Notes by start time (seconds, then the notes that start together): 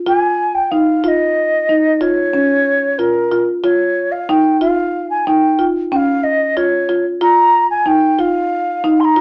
0.06 F4 G#5
0.55 G5
0.71 D#4 F5
1.03 F4 F5
1.08 D#5
1.69 D#4
2.01 F4 C#5
2.33 C#4
2.98 F4 A#4
3.32 F4
3.64 F4 C#5
4.12 F5
4.29 D#4 G5
4.61 F4 F5
5.10 G#5
5.26 D#4 G5
5.59 F4
5.91 C#4 G5
5.96 F5
6.24 D#5
6.57 F4 C#5
6.89 F4
7.21 F4 A#5
7.71 G#5
7.86 D#4 G5
8.19 F4 F5
8.84 D#4
9.00 C6
9.05 A#5
9.16 F4